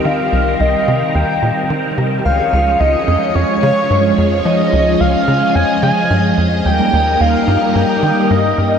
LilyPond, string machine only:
\new Staff \with { instrumentName = "String machine" } { \time 4/4 \key des \lydian \tempo 4 = 109 << { bes'1 | des''1 | ees''1~ | ees''1 | } \\ { <ees g c' g'>1 | <f aes des' aes'>1~ | <f aes des' aes'>1 | <g bes ees' bes'>1 | } >> }